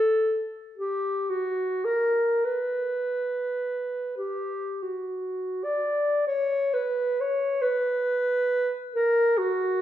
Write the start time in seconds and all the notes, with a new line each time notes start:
Already playing: A4
0.78 G4
1.30 F#4
1.85 A#4
2.45 B4
4.18 G4
4.83 F#4
5.64 D5
6.27 C#5
6.74 B4
7.21 C#5
7.62 B4
8.95 A#4
9.38 F#4